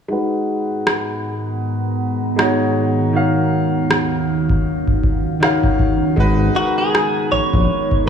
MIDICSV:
0, 0, Header, 1, 6, 480
1, 0, Start_track
1, 0, Tempo, 759494
1, 62, Time_signature, 4, 2, 24, 8
1, 5115, End_track
2, 0, Start_track
2, 0, Title_t, "Clean electric guitar"
2, 0, Program_c, 0, 27
2, 4147, Note_on_c, 0, 66, 92
2, 4283, Note_off_c, 0, 66, 0
2, 4285, Note_on_c, 0, 68, 93
2, 4622, Note_off_c, 0, 68, 0
2, 4625, Note_on_c, 0, 73, 107
2, 5078, Note_off_c, 0, 73, 0
2, 5115, End_track
3, 0, Start_track
3, 0, Title_t, "Grand piano"
3, 0, Program_c, 1, 0
3, 53, Note_on_c, 1, 56, 75
3, 61, Note_on_c, 1, 63, 69
3, 70, Note_on_c, 1, 66, 73
3, 78, Note_on_c, 1, 71, 83
3, 174, Control_c, 1, 64, 127
3, 689, Note_off_c, 1, 56, 0
3, 693, Note_off_c, 1, 63, 0
3, 697, Note_off_c, 1, 66, 0
3, 701, Note_off_c, 1, 71, 0
3, 1493, Note_on_c, 1, 56, 76
3, 1502, Note_on_c, 1, 63, 67
3, 1509, Note_on_c, 1, 66, 72
3, 1518, Note_on_c, 1, 73, 86
3, 1815, Note_off_c, 1, 56, 0
3, 1820, Note_off_c, 1, 63, 0
3, 1823, Note_off_c, 1, 66, 0
3, 1828, Note_off_c, 1, 73, 0
3, 1974, Note_on_c, 1, 51, 79
3, 1982, Note_on_c, 1, 61, 75
3, 1989, Control_c, 1, 64, 0
3, 1991, Note_on_c, 1, 66, 73
3, 2000, Note_on_c, 1, 77, 92
3, 2116, Control_c, 1, 64, 127
3, 2609, Note_off_c, 1, 51, 0
3, 2613, Note_off_c, 1, 61, 0
3, 2618, Note_off_c, 1, 66, 0
3, 2622, Note_off_c, 1, 77, 0
3, 3414, Note_on_c, 1, 51, 81
3, 3422, Note_on_c, 1, 61, 71
3, 3431, Note_on_c, 1, 66, 70
3, 3438, Note_on_c, 1, 77, 84
3, 3736, Note_off_c, 1, 51, 0
3, 3740, Note_off_c, 1, 61, 0
3, 3744, Note_off_c, 1, 66, 0
3, 3748, Note_off_c, 1, 77, 0
3, 3894, Note_on_c, 1, 56, 87
3, 3903, Note_on_c, 1, 63, 76
3, 3911, Control_c, 1, 64, 0
3, 3911, Note_on_c, 1, 66, 83
3, 3918, Note_on_c, 1, 71, 99
3, 4008, Control_c, 1, 64, 127
3, 4065, Note_off_c, 1, 56, 0
3, 4070, Note_off_c, 1, 63, 0
3, 4074, Note_off_c, 1, 66, 0
3, 4078, Note_off_c, 1, 71, 0
3, 4135, Note_on_c, 1, 56, 73
3, 4143, Note_on_c, 1, 63, 65
3, 4152, Note_on_c, 1, 66, 63
3, 4159, Note_on_c, 1, 70, 66
3, 4198, Note_off_c, 1, 70, 0
3, 4202, Note_on_c, 1, 71, 78
3, 4770, Note_off_c, 1, 56, 0
3, 4774, Note_off_c, 1, 63, 0
3, 4778, Note_off_c, 1, 66, 0
3, 4803, Note_off_c, 1, 71, 0
3, 5092, Note_on_c, 1, 56, 62
3, 5115, Note_off_c, 1, 56, 0
3, 5115, End_track
4, 0, Start_track
4, 0, Title_t, "Ambient pad"
4, 0, Program_c, 2, 92
4, 61, Note_on_c, 2, 82, 74
4, 62, Note_on_c, 2, 44, 81
4, 63, Note_on_c, 2, 51, 71
4, 63, Note_on_c, 2, 59, 76
4, 64, Note_on_c, 2, 78, 88
4, 1962, Note_off_c, 2, 82, 0
4, 1963, Note_off_c, 2, 44, 0
4, 1963, Note_off_c, 2, 59, 0
4, 1964, Note_off_c, 2, 78, 0
4, 1983, Note_on_c, 2, 39, 82
4, 1983, Note_on_c, 2, 66, 76
4, 1984, Note_on_c, 2, 61, 73
4, 1984, Note_on_c, 2, 77, 89
4, 3877, Note_off_c, 2, 51, 0
4, 3883, Note_off_c, 2, 39, 0
4, 3883, Note_off_c, 2, 66, 0
4, 3884, Note_off_c, 2, 61, 0
4, 3884, Note_off_c, 2, 77, 0
4, 3901, Note_on_c, 2, 59, 84
4, 3902, Note_on_c, 2, 56, 81
4, 3902, Note_on_c, 2, 63, 75
4, 3902, Note_on_c, 2, 68, 71
4, 3902, Note_on_c, 2, 82, 78
4, 5115, Note_off_c, 2, 56, 0
4, 5115, Note_off_c, 2, 59, 0
4, 5115, Note_off_c, 2, 63, 0
4, 5115, Note_off_c, 2, 68, 0
4, 5115, Note_off_c, 2, 82, 0
4, 5115, End_track
5, 0, Start_track
5, 0, Title_t, "Analog synth bass"
5, 0, Program_c, 3, 38
5, 3903, Note_on_c, 3, 32, 120
5, 4098, Note_off_c, 3, 32, 0
5, 4625, Note_on_c, 3, 34, 50
5, 4680, Note_off_c, 3, 34, 0
5, 4764, Note_on_c, 3, 34, 90
5, 4844, Note_off_c, 3, 34, 0
5, 5115, End_track
6, 0, Start_track
6, 0, Title_t, "Drums"
6, 549, Note_on_c, 9, 37, 102
6, 612, Note_off_c, 9, 37, 0
6, 1510, Note_on_c, 9, 37, 100
6, 1573, Note_off_c, 9, 37, 0
6, 2469, Note_on_c, 9, 37, 110
6, 2532, Note_off_c, 9, 37, 0
6, 2841, Note_on_c, 9, 36, 88
6, 2904, Note_off_c, 9, 36, 0
6, 3082, Note_on_c, 9, 36, 80
6, 3145, Note_off_c, 9, 36, 0
6, 3182, Note_on_c, 9, 36, 90
6, 3246, Note_off_c, 9, 36, 0
6, 3430, Note_on_c, 9, 37, 103
6, 3493, Note_off_c, 9, 37, 0
6, 3562, Note_on_c, 9, 36, 88
6, 3625, Note_off_c, 9, 36, 0
6, 3662, Note_on_c, 9, 36, 88
6, 3725, Note_off_c, 9, 36, 0
6, 3902, Note_on_c, 9, 36, 106
6, 3965, Note_off_c, 9, 36, 0
6, 4391, Note_on_c, 9, 37, 118
6, 4454, Note_off_c, 9, 37, 0
6, 4762, Note_on_c, 9, 36, 98
6, 4825, Note_off_c, 9, 36, 0
6, 5002, Note_on_c, 9, 36, 85
6, 5065, Note_off_c, 9, 36, 0
6, 5115, End_track
0, 0, End_of_file